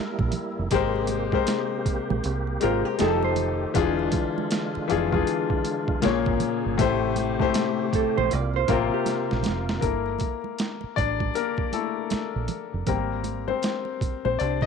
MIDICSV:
0, 0, Header, 1, 7, 480
1, 0, Start_track
1, 0, Tempo, 759494
1, 453, Time_signature, 4, 2, 24, 8
1, 9266, End_track
2, 0, Start_track
2, 0, Title_t, "Hollow-body jazz guitar"
2, 0, Program_c, 0, 26
2, 1665, Note_on_c, 0, 65, 76
2, 1802, Note_off_c, 0, 65, 0
2, 1802, Note_on_c, 0, 67, 92
2, 1890, Note_off_c, 0, 67, 0
2, 1903, Note_on_c, 0, 69, 93
2, 2036, Note_off_c, 0, 69, 0
2, 2050, Note_on_c, 0, 72, 75
2, 2363, Note_off_c, 0, 72, 0
2, 5026, Note_on_c, 0, 69, 69
2, 5158, Note_off_c, 0, 69, 0
2, 5166, Note_on_c, 0, 72, 83
2, 5265, Note_off_c, 0, 72, 0
2, 5265, Note_on_c, 0, 74, 89
2, 5397, Note_off_c, 0, 74, 0
2, 5411, Note_on_c, 0, 72, 87
2, 5495, Note_off_c, 0, 72, 0
2, 5498, Note_on_c, 0, 70, 78
2, 5634, Note_off_c, 0, 70, 0
2, 5650, Note_on_c, 0, 67, 78
2, 6194, Note_off_c, 0, 67, 0
2, 9266, End_track
3, 0, Start_track
3, 0, Title_t, "Grand piano"
3, 0, Program_c, 1, 0
3, 0, Control_c, 1, 64, 127
3, 0, Note_on_c, 1, 55, 80
3, 0, Note_on_c, 1, 64, 77
3, 0, Note_on_c, 1, 69, 69
3, 0, Note_on_c, 1, 70, 94
3, 285, Note_off_c, 1, 55, 0
3, 289, Note_off_c, 1, 64, 0
3, 292, Note_off_c, 1, 69, 0
3, 295, Note_off_c, 1, 70, 0
3, 452, Note_on_c, 1, 56, 117
3, 455, Note_on_c, 1, 67, 104
3, 462, Control_c, 1, 64, 0
3, 464, Note_on_c, 1, 70, 94
3, 470, Note_on_c, 1, 72, 112
3, 572, Control_c, 1, 64, 127
3, 810, Note_off_c, 1, 56, 0
3, 812, Note_off_c, 1, 67, 0
3, 816, Note_off_c, 1, 70, 0
3, 819, Note_off_c, 1, 72, 0
3, 833, Note_on_c, 1, 56, 83
3, 839, Note_on_c, 1, 67, 80
3, 845, Note_on_c, 1, 70, 73
3, 851, Note_on_c, 1, 72, 100
3, 1608, Note_off_c, 1, 56, 0
3, 1612, Note_off_c, 1, 67, 0
3, 1615, Note_off_c, 1, 70, 0
3, 1617, Note_off_c, 1, 72, 0
3, 1646, Note_on_c, 1, 56, 83
3, 1653, Note_on_c, 1, 67, 73
3, 1659, Note_on_c, 1, 70, 86
3, 1665, Note_on_c, 1, 72, 84
3, 1886, Note_on_c, 1, 53, 86
3, 1888, Note_off_c, 1, 67, 0
3, 1889, Note_off_c, 1, 56, 0
3, 1892, Note_on_c, 1, 63, 78
3, 1896, Note_off_c, 1, 70, 0
3, 1897, Note_on_c, 1, 67, 81
3, 1899, Note_off_c, 1, 72, 0
3, 1901, Control_c, 1, 64, 0
3, 1905, Note_on_c, 1, 68, 87
3, 1947, Note_on_c, 1, 69, 89
3, 1949, Note_off_c, 1, 68, 0
3, 2006, Control_c, 1, 64, 127
3, 2345, Note_off_c, 1, 53, 0
3, 2348, Note_off_c, 1, 63, 0
3, 2351, Note_off_c, 1, 67, 0
3, 2364, Note_on_c, 1, 52, 105
3, 2369, Note_on_c, 1, 62, 87
3, 2375, Note_on_c, 1, 65, 99
3, 2376, Note_off_c, 1, 69, 0
3, 2381, Control_c, 1, 64, 0
3, 2382, Note_on_c, 1, 68, 114
3, 2500, Control_c, 1, 64, 127
3, 3052, Note_off_c, 1, 52, 0
3, 3055, Note_off_c, 1, 62, 0
3, 3058, Note_off_c, 1, 65, 0
3, 3062, Note_off_c, 1, 68, 0
3, 3082, Note_on_c, 1, 52, 94
3, 3088, Note_on_c, 1, 62, 75
3, 3096, Note_on_c, 1, 65, 81
3, 3102, Note_on_c, 1, 68, 98
3, 3220, Note_off_c, 1, 52, 0
3, 3226, Note_off_c, 1, 62, 0
3, 3229, Note_on_c, 1, 52, 85
3, 3230, Note_off_c, 1, 65, 0
3, 3233, Note_off_c, 1, 68, 0
3, 3235, Note_on_c, 1, 62, 73
3, 3240, Note_on_c, 1, 65, 81
3, 3247, Note_on_c, 1, 68, 92
3, 3803, Note_on_c, 1, 46, 95
3, 3807, Note_off_c, 1, 68, 0
3, 3808, Note_on_c, 1, 58, 85
3, 3809, Note_off_c, 1, 52, 0
3, 3812, Note_off_c, 1, 62, 0
3, 3814, Note_off_c, 1, 65, 0
3, 3817, Note_on_c, 1, 68, 82
3, 3820, Control_c, 1, 64, 0
3, 3822, Note_on_c, 1, 73, 98
3, 3914, Control_c, 1, 64, 127
3, 4264, Note_off_c, 1, 46, 0
3, 4267, Note_off_c, 1, 58, 0
3, 4271, Note_off_c, 1, 68, 0
3, 4273, Note_off_c, 1, 73, 0
3, 4282, Note_on_c, 1, 45, 112
3, 4288, Note_on_c, 1, 57, 94
3, 4295, Note_on_c, 1, 67, 85
3, 4302, Control_c, 1, 64, 0
3, 4303, Note_on_c, 1, 72, 123
3, 4400, Control_c, 1, 64, 127
3, 4645, Note_off_c, 1, 45, 0
3, 4648, Note_off_c, 1, 57, 0
3, 4652, Note_off_c, 1, 67, 0
3, 4655, Note_off_c, 1, 72, 0
3, 4671, Note_on_c, 1, 45, 97
3, 4677, Note_on_c, 1, 57, 76
3, 4685, Note_on_c, 1, 67, 90
3, 4690, Note_on_c, 1, 72, 106
3, 5250, Note_off_c, 1, 45, 0
3, 5253, Note_off_c, 1, 57, 0
3, 5257, Note_off_c, 1, 67, 0
3, 5259, Note_off_c, 1, 72, 0
3, 5261, Control_c, 1, 64, 0
3, 5379, Control_c, 1, 64, 127
3, 5485, Note_on_c, 1, 48, 84
3, 5491, Note_on_c, 1, 58, 87
3, 5499, Note_on_c, 1, 65, 76
3, 5505, Note_on_c, 1, 72, 94
3, 6173, Note_off_c, 1, 48, 0
3, 6176, Note_off_c, 1, 58, 0
3, 6180, Note_off_c, 1, 65, 0
3, 6183, Note_off_c, 1, 72, 0
3, 6201, Note_on_c, 1, 70, 76
3, 6208, Note_on_c, 1, 69, 47
3, 6211, Note_on_c, 1, 58, 59
3, 6216, Note_on_c, 1, 64, 46
3, 6222, Control_c, 1, 64, 0
3, 6346, Control_c, 1, 64, 127
3, 6549, Note_off_c, 1, 69, 0
3, 6553, Note_off_c, 1, 64, 0
3, 6902, Note_off_c, 1, 70, 0
3, 6910, Note_off_c, 1, 58, 0
3, 6928, Note_on_c, 1, 74, 97
3, 6939, Note_on_c, 1, 62, 66
3, 7153, Note_off_c, 1, 74, 0
3, 7159, Note_off_c, 1, 62, 0
3, 7175, Note_on_c, 1, 70, 88
3, 7183, Note_on_c, 1, 58, 65
3, 7402, Note_off_c, 1, 58, 0
3, 7416, Note_on_c, 1, 69, 78
3, 7417, Note_on_c, 1, 57, 58
3, 7420, Note_on_c, 1, 58, 39
3, 7421, Note_off_c, 1, 70, 0
3, 7422, Note_on_c, 1, 64, 47
3, 7633, Note_off_c, 1, 58, 0
3, 7634, Note_off_c, 1, 64, 0
3, 7869, Note_off_c, 1, 69, 0
3, 7873, Note_off_c, 1, 57, 0
3, 8133, Note_on_c, 1, 70, 74
3, 8139, Note_on_c, 1, 55, 48
3, 8141, Control_c, 1, 64, 0
3, 8141, Note_on_c, 1, 58, 58
3, 8145, Note_on_c, 1, 60, 55
3, 8268, Control_c, 1, 64, 127
3, 8474, Note_off_c, 1, 55, 0
3, 8477, Note_off_c, 1, 60, 0
3, 8500, Note_off_c, 1, 58, 0
3, 8517, Note_on_c, 1, 72, 84
3, 8528, Note_on_c, 1, 60, 65
3, 8530, Note_off_c, 1, 70, 0
3, 8978, Note_off_c, 1, 60, 0
3, 8996, Note_off_c, 1, 72, 0
3, 9005, Note_on_c, 1, 72, 82
3, 9012, Note_on_c, 1, 60, 54
3, 9090, Note_off_c, 1, 72, 0
3, 9092, Note_on_c, 1, 74, 89
3, 9094, Note_off_c, 1, 60, 0
3, 9103, Note_on_c, 1, 62, 66
3, 9125, Note_off_c, 1, 74, 0
3, 9135, Note_off_c, 1, 62, 0
3, 9241, Note_on_c, 1, 75, 103
3, 9266, Note_off_c, 1, 75, 0
3, 9266, End_track
4, 0, Start_track
4, 0, Title_t, "Tonewheel organ"
4, 0, Program_c, 2, 16
4, 0, Note_on_c, 2, 55, 62
4, 0, Note_on_c, 2, 58, 70
4, 0, Note_on_c, 2, 64, 77
4, 424, Note_off_c, 2, 55, 0
4, 433, Note_off_c, 2, 64, 0
4, 435, Note_off_c, 2, 58, 0
4, 444, Note_on_c, 2, 48, 75
4, 446, Note_on_c, 2, 58, 61
4, 450, Note_on_c, 2, 67, 85
4, 1874, Note_off_c, 2, 48, 0
4, 1875, Note_off_c, 2, 58, 0
4, 1895, Note_on_c, 2, 51, 66
4, 1898, Note_on_c, 2, 57, 63
4, 2353, Note_off_c, 2, 67, 0
4, 2369, Note_off_c, 2, 51, 0
4, 2371, Note_off_c, 2, 57, 0
4, 2379, Note_on_c, 2, 65, 86
4, 2380, Note_on_c, 2, 50, 73
4, 2380, Note_on_c, 2, 56, 66
4, 3802, Note_off_c, 2, 50, 0
4, 3802, Note_off_c, 2, 56, 0
4, 3802, Note_off_c, 2, 65, 0
4, 3805, Note_on_c, 2, 49, 63
4, 3806, Note_on_c, 2, 68, 78
4, 3807, Note_on_c, 2, 58, 63
4, 4284, Note_off_c, 2, 49, 0
4, 4285, Note_off_c, 2, 58, 0
4, 4285, Note_off_c, 2, 68, 0
4, 4292, Note_on_c, 2, 48, 75
4, 4295, Note_on_c, 2, 57, 65
4, 4295, Note_on_c, 2, 67, 90
4, 5241, Note_off_c, 2, 48, 0
4, 5244, Note_off_c, 2, 67, 0
4, 5245, Note_off_c, 2, 57, 0
4, 5249, Note_on_c, 2, 48, 69
4, 5249, Note_on_c, 2, 58, 62
4, 5252, Note_on_c, 2, 65, 78
4, 6201, Note_off_c, 2, 48, 0
4, 6201, Note_off_c, 2, 58, 0
4, 6203, Note_off_c, 2, 65, 0
4, 9266, End_track
5, 0, Start_track
5, 0, Title_t, "Fingered electric bass"
5, 0, Program_c, 3, 33
5, 127, Note_on_c, 3, 34, 81
5, 203, Note_off_c, 3, 34, 0
5, 373, Note_on_c, 3, 29, 80
5, 447, Note_off_c, 3, 29, 0
5, 460, Note_on_c, 3, 32, 90
5, 861, Note_off_c, 3, 32, 0
5, 1330, Note_on_c, 3, 34, 91
5, 1405, Note_off_c, 3, 34, 0
5, 1424, Note_on_c, 3, 36, 105
5, 1622, Note_off_c, 3, 36, 0
5, 1668, Note_on_c, 3, 32, 104
5, 1784, Note_off_c, 3, 32, 0
5, 1905, Note_on_c, 3, 29, 113
5, 2304, Note_off_c, 3, 29, 0
5, 2378, Note_on_c, 3, 28, 89
5, 2578, Note_off_c, 3, 28, 0
5, 3107, Note_on_c, 3, 29, 86
5, 3304, Note_off_c, 3, 29, 0
5, 3829, Note_on_c, 3, 34, 104
5, 3944, Note_off_c, 3, 34, 0
5, 3965, Note_on_c, 3, 32, 88
5, 4042, Note_off_c, 3, 32, 0
5, 4208, Note_on_c, 3, 31, 84
5, 4284, Note_off_c, 3, 31, 0
5, 4298, Note_on_c, 3, 33, 88
5, 4700, Note_off_c, 3, 33, 0
5, 5170, Note_on_c, 3, 34, 79
5, 5245, Note_off_c, 3, 34, 0
5, 5265, Note_on_c, 3, 36, 106
5, 5462, Note_off_c, 3, 36, 0
5, 5496, Note_on_c, 3, 33, 100
5, 5617, Note_off_c, 3, 33, 0
5, 5892, Note_on_c, 3, 34, 90
5, 5966, Note_off_c, 3, 34, 0
5, 5986, Note_on_c, 3, 29, 73
5, 6183, Note_off_c, 3, 29, 0
5, 6216, Note_on_c, 3, 31, 87
5, 6417, Note_off_c, 3, 31, 0
5, 6941, Note_on_c, 3, 33, 79
5, 7140, Note_off_c, 3, 33, 0
5, 7810, Note_on_c, 3, 34, 75
5, 7885, Note_off_c, 3, 34, 0
5, 8049, Note_on_c, 3, 29, 77
5, 8125, Note_off_c, 3, 29, 0
5, 8140, Note_on_c, 3, 32, 71
5, 8542, Note_off_c, 3, 32, 0
5, 9007, Note_on_c, 3, 34, 77
5, 9083, Note_off_c, 3, 34, 0
5, 9107, Note_on_c, 3, 36, 102
5, 9266, Note_off_c, 3, 36, 0
5, 9266, End_track
6, 0, Start_track
6, 0, Title_t, "Muted fingered electric bass strokes"
6, 1180, Note_on_c, 9, 29, 46
6, 1243, Note_off_c, 9, 29, 0
6, 3013, Note_on_c, 9, 29, 47
6, 3076, Note_off_c, 9, 29, 0
6, 5019, Note_on_c, 9, 29, 48
6, 5083, Note_off_c, 9, 29, 0
6, 6848, Note_on_c, 9, 29, 41
6, 6911, Note_off_c, 9, 29, 0
6, 7667, Note_on_c, 9, 29, 41
6, 7730, Note_off_c, 9, 29, 0
6, 8863, Note_on_c, 9, 29, 45
6, 8926, Note_off_c, 9, 29, 0
6, 9266, End_track
7, 0, Start_track
7, 0, Title_t, "Drums"
7, 118, Note_on_c, 9, 36, 86
7, 121, Note_on_c, 9, 62, 39
7, 182, Note_off_c, 9, 36, 0
7, 184, Note_off_c, 9, 62, 0
7, 200, Note_on_c, 9, 42, 70
7, 209, Note_on_c, 9, 63, 50
7, 209, Note_on_c, 9, 64, 69
7, 263, Note_off_c, 9, 42, 0
7, 272, Note_off_c, 9, 63, 0
7, 272, Note_off_c, 9, 64, 0
7, 447, Note_on_c, 9, 42, 87
7, 451, Note_on_c, 9, 36, 94
7, 457, Note_on_c, 9, 62, 35
7, 457, Note_on_c, 9, 64, 77
7, 510, Note_off_c, 9, 42, 0
7, 514, Note_off_c, 9, 36, 0
7, 520, Note_off_c, 9, 62, 0
7, 520, Note_off_c, 9, 64, 0
7, 605, Note_on_c, 9, 62, 22
7, 668, Note_off_c, 9, 62, 0
7, 678, Note_on_c, 9, 42, 82
7, 687, Note_on_c, 9, 63, 70
7, 741, Note_off_c, 9, 42, 0
7, 750, Note_off_c, 9, 63, 0
7, 836, Note_on_c, 9, 36, 81
7, 842, Note_on_c, 9, 63, 60
7, 899, Note_off_c, 9, 36, 0
7, 905, Note_off_c, 9, 63, 0
7, 928, Note_on_c, 9, 42, 101
7, 929, Note_on_c, 9, 62, 31
7, 936, Note_on_c, 9, 38, 127
7, 991, Note_off_c, 9, 42, 0
7, 993, Note_off_c, 9, 62, 0
7, 999, Note_off_c, 9, 38, 0
7, 1173, Note_on_c, 9, 36, 100
7, 1175, Note_on_c, 9, 42, 69
7, 1236, Note_off_c, 9, 36, 0
7, 1238, Note_off_c, 9, 42, 0
7, 1329, Note_on_c, 9, 63, 68
7, 1329, Note_on_c, 9, 64, 68
7, 1392, Note_off_c, 9, 63, 0
7, 1392, Note_off_c, 9, 64, 0
7, 1412, Note_on_c, 9, 62, 28
7, 1414, Note_on_c, 9, 42, 72
7, 1475, Note_off_c, 9, 62, 0
7, 1478, Note_off_c, 9, 42, 0
7, 1563, Note_on_c, 9, 62, 22
7, 1626, Note_off_c, 9, 62, 0
7, 1649, Note_on_c, 9, 42, 77
7, 1654, Note_on_c, 9, 63, 59
7, 1712, Note_off_c, 9, 42, 0
7, 1717, Note_off_c, 9, 63, 0
7, 1888, Note_on_c, 9, 42, 87
7, 1891, Note_on_c, 9, 63, 70
7, 1897, Note_on_c, 9, 38, 93
7, 1951, Note_off_c, 9, 42, 0
7, 1954, Note_off_c, 9, 63, 0
7, 1960, Note_off_c, 9, 38, 0
7, 2039, Note_on_c, 9, 62, 43
7, 2102, Note_off_c, 9, 62, 0
7, 2124, Note_on_c, 9, 42, 71
7, 2126, Note_on_c, 9, 63, 50
7, 2126, Note_on_c, 9, 64, 69
7, 2187, Note_off_c, 9, 42, 0
7, 2189, Note_off_c, 9, 63, 0
7, 2189, Note_off_c, 9, 64, 0
7, 2369, Note_on_c, 9, 42, 92
7, 2372, Note_on_c, 9, 36, 113
7, 2375, Note_on_c, 9, 62, 34
7, 2375, Note_on_c, 9, 64, 74
7, 2432, Note_off_c, 9, 42, 0
7, 2435, Note_off_c, 9, 36, 0
7, 2438, Note_off_c, 9, 62, 0
7, 2438, Note_off_c, 9, 64, 0
7, 2522, Note_on_c, 9, 62, 26
7, 2585, Note_off_c, 9, 62, 0
7, 2602, Note_on_c, 9, 42, 84
7, 2605, Note_on_c, 9, 63, 67
7, 2612, Note_on_c, 9, 36, 95
7, 2665, Note_off_c, 9, 42, 0
7, 2669, Note_off_c, 9, 63, 0
7, 2675, Note_off_c, 9, 36, 0
7, 2767, Note_on_c, 9, 63, 65
7, 2830, Note_off_c, 9, 63, 0
7, 2848, Note_on_c, 9, 42, 86
7, 2853, Note_on_c, 9, 62, 29
7, 2856, Note_on_c, 9, 38, 125
7, 2911, Note_off_c, 9, 42, 0
7, 2917, Note_off_c, 9, 62, 0
7, 2919, Note_off_c, 9, 38, 0
7, 3003, Note_on_c, 9, 62, 37
7, 3066, Note_off_c, 9, 62, 0
7, 3094, Note_on_c, 9, 42, 68
7, 3157, Note_off_c, 9, 42, 0
7, 3239, Note_on_c, 9, 36, 86
7, 3248, Note_on_c, 9, 63, 62
7, 3248, Note_on_c, 9, 64, 60
7, 3303, Note_off_c, 9, 36, 0
7, 3311, Note_off_c, 9, 63, 0
7, 3311, Note_off_c, 9, 64, 0
7, 3331, Note_on_c, 9, 42, 67
7, 3331, Note_on_c, 9, 62, 28
7, 3394, Note_off_c, 9, 62, 0
7, 3395, Note_off_c, 9, 42, 0
7, 3476, Note_on_c, 9, 36, 100
7, 3539, Note_off_c, 9, 36, 0
7, 3568, Note_on_c, 9, 42, 77
7, 3569, Note_on_c, 9, 63, 62
7, 3631, Note_off_c, 9, 42, 0
7, 3632, Note_off_c, 9, 63, 0
7, 3716, Note_on_c, 9, 36, 82
7, 3779, Note_off_c, 9, 36, 0
7, 3805, Note_on_c, 9, 42, 81
7, 3811, Note_on_c, 9, 62, 31
7, 3811, Note_on_c, 9, 63, 73
7, 3814, Note_on_c, 9, 38, 98
7, 3869, Note_off_c, 9, 42, 0
7, 3874, Note_off_c, 9, 62, 0
7, 3874, Note_off_c, 9, 63, 0
7, 3877, Note_off_c, 9, 38, 0
7, 3956, Note_on_c, 9, 62, 41
7, 3959, Note_on_c, 9, 36, 83
7, 4020, Note_off_c, 9, 62, 0
7, 4022, Note_off_c, 9, 36, 0
7, 4045, Note_on_c, 9, 42, 72
7, 4046, Note_on_c, 9, 63, 48
7, 4046, Note_on_c, 9, 64, 74
7, 4108, Note_off_c, 9, 42, 0
7, 4109, Note_off_c, 9, 63, 0
7, 4109, Note_off_c, 9, 64, 0
7, 4291, Note_on_c, 9, 36, 105
7, 4291, Note_on_c, 9, 42, 87
7, 4296, Note_on_c, 9, 62, 35
7, 4296, Note_on_c, 9, 64, 77
7, 4354, Note_off_c, 9, 36, 0
7, 4354, Note_off_c, 9, 42, 0
7, 4359, Note_off_c, 9, 62, 0
7, 4359, Note_off_c, 9, 64, 0
7, 4524, Note_on_c, 9, 63, 65
7, 4525, Note_on_c, 9, 42, 76
7, 4587, Note_off_c, 9, 63, 0
7, 4588, Note_off_c, 9, 42, 0
7, 4675, Note_on_c, 9, 36, 91
7, 4685, Note_on_c, 9, 63, 59
7, 4738, Note_off_c, 9, 36, 0
7, 4748, Note_off_c, 9, 63, 0
7, 4767, Note_on_c, 9, 42, 93
7, 4775, Note_on_c, 9, 38, 118
7, 4830, Note_off_c, 9, 42, 0
7, 4838, Note_off_c, 9, 38, 0
7, 5011, Note_on_c, 9, 36, 98
7, 5014, Note_on_c, 9, 42, 66
7, 5074, Note_off_c, 9, 36, 0
7, 5078, Note_off_c, 9, 42, 0
7, 5169, Note_on_c, 9, 63, 68
7, 5169, Note_on_c, 9, 64, 69
7, 5232, Note_off_c, 9, 63, 0
7, 5232, Note_off_c, 9, 64, 0
7, 5252, Note_on_c, 9, 42, 77
7, 5316, Note_off_c, 9, 42, 0
7, 5394, Note_on_c, 9, 62, 24
7, 5458, Note_off_c, 9, 62, 0
7, 5486, Note_on_c, 9, 42, 79
7, 5488, Note_on_c, 9, 36, 96
7, 5489, Note_on_c, 9, 63, 62
7, 5549, Note_off_c, 9, 42, 0
7, 5551, Note_off_c, 9, 36, 0
7, 5552, Note_off_c, 9, 63, 0
7, 5725, Note_on_c, 9, 62, 33
7, 5725, Note_on_c, 9, 63, 68
7, 5727, Note_on_c, 9, 42, 82
7, 5739, Note_on_c, 9, 38, 52
7, 5788, Note_off_c, 9, 62, 0
7, 5788, Note_off_c, 9, 63, 0
7, 5790, Note_off_c, 9, 42, 0
7, 5803, Note_off_c, 9, 38, 0
7, 5884, Note_on_c, 9, 38, 59
7, 5948, Note_off_c, 9, 38, 0
7, 5959, Note_on_c, 9, 63, 51
7, 5959, Note_on_c, 9, 64, 69
7, 5964, Note_on_c, 9, 42, 67
7, 5979, Note_on_c, 9, 38, 85
7, 6022, Note_off_c, 9, 63, 0
7, 6022, Note_off_c, 9, 64, 0
7, 6027, Note_off_c, 9, 42, 0
7, 6042, Note_off_c, 9, 38, 0
7, 6125, Note_on_c, 9, 38, 93
7, 6188, Note_off_c, 9, 38, 0
7, 6202, Note_on_c, 9, 64, 59
7, 6209, Note_on_c, 9, 42, 75
7, 6210, Note_on_c, 9, 36, 87
7, 6265, Note_off_c, 9, 64, 0
7, 6272, Note_off_c, 9, 42, 0
7, 6274, Note_off_c, 9, 36, 0
7, 6356, Note_on_c, 9, 62, 24
7, 6419, Note_off_c, 9, 62, 0
7, 6437, Note_on_c, 9, 63, 63
7, 6444, Note_on_c, 9, 42, 66
7, 6452, Note_on_c, 9, 36, 73
7, 6500, Note_off_c, 9, 63, 0
7, 6507, Note_off_c, 9, 42, 0
7, 6515, Note_off_c, 9, 36, 0
7, 6598, Note_on_c, 9, 63, 54
7, 6662, Note_off_c, 9, 63, 0
7, 6690, Note_on_c, 9, 42, 81
7, 6698, Note_on_c, 9, 38, 121
7, 6753, Note_off_c, 9, 42, 0
7, 6761, Note_off_c, 9, 38, 0
7, 6830, Note_on_c, 9, 62, 28
7, 6893, Note_off_c, 9, 62, 0
7, 6933, Note_on_c, 9, 36, 91
7, 6939, Note_on_c, 9, 42, 58
7, 6996, Note_off_c, 9, 36, 0
7, 7003, Note_off_c, 9, 42, 0
7, 7080, Note_on_c, 9, 36, 74
7, 7081, Note_on_c, 9, 63, 54
7, 7143, Note_off_c, 9, 36, 0
7, 7144, Note_off_c, 9, 63, 0
7, 7166, Note_on_c, 9, 62, 25
7, 7176, Note_on_c, 9, 42, 74
7, 7230, Note_off_c, 9, 62, 0
7, 7239, Note_off_c, 9, 42, 0
7, 7311, Note_on_c, 9, 62, 21
7, 7318, Note_on_c, 9, 36, 83
7, 7375, Note_off_c, 9, 62, 0
7, 7381, Note_off_c, 9, 36, 0
7, 7410, Note_on_c, 9, 63, 62
7, 7412, Note_on_c, 9, 42, 74
7, 7473, Note_off_c, 9, 63, 0
7, 7475, Note_off_c, 9, 42, 0
7, 7649, Note_on_c, 9, 42, 71
7, 7653, Note_on_c, 9, 62, 31
7, 7653, Note_on_c, 9, 63, 58
7, 7658, Note_on_c, 9, 38, 92
7, 7713, Note_off_c, 9, 42, 0
7, 7716, Note_off_c, 9, 62, 0
7, 7716, Note_off_c, 9, 63, 0
7, 7721, Note_off_c, 9, 38, 0
7, 7887, Note_on_c, 9, 42, 68
7, 7891, Note_on_c, 9, 63, 43
7, 7891, Note_on_c, 9, 64, 63
7, 7950, Note_off_c, 9, 42, 0
7, 7955, Note_off_c, 9, 63, 0
7, 7955, Note_off_c, 9, 64, 0
7, 8130, Note_on_c, 9, 64, 61
7, 8132, Note_on_c, 9, 42, 73
7, 8133, Note_on_c, 9, 36, 91
7, 8193, Note_off_c, 9, 64, 0
7, 8195, Note_off_c, 9, 42, 0
7, 8196, Note_off_c, 9, 36, 0
7, 8366, Note_on_c, 9, 63, 69
7, 8369, Note_on_c, 9, 42, 66
7, 8429, Note_off_c, 9, 63, 0
7, 8432, Note_off_c, 9, 42, 0
7, 8520, Note_on_c, 9, 63, 54
7, 8583, Note_off_c, 9, 63, 0
7, 8609, Note_on_c, 9, 62, 26
7, 8613, Note_on_c, 9, 42, 83
7, 8621, Note_on_c, 9, 38, 112
7, 8672, Note_off_c, 9, 62, 0
7, 8676, Note_off_c, 9, 42, 0
7, 8684, Note_off_c, 9, 38, 0
7, 8754, Note_on_c, 9, 62, 31
7, 8817, Note_off_c, 9, 62, 0
7, 8856, Note_on_c, 9, 36, 84
7, 8861, Note_on_c, 9, 42, 59
7, 8919, Note_off_c, 9, 36, 0
7, 8924, Note_off_c, 9, 42, 0
7, 9006, Note_on_c, 9, 63, 59
7, 9070, Note_off_c, 9, 63, 0
7, 9098, Note_on_c, 9, 42, 60
7, 9162, Note_off_c, 9, 42, 0
7, 9234, Note_on_c, 9, 62, 25
7, 9239, Note_on_c, 9, 36, 97
7, 9266, Note_off_c, 9, 36, 0
7, 9266, Note_off_c, 9, 62, 0
7, 9266, End_track
0, 0, End_of_file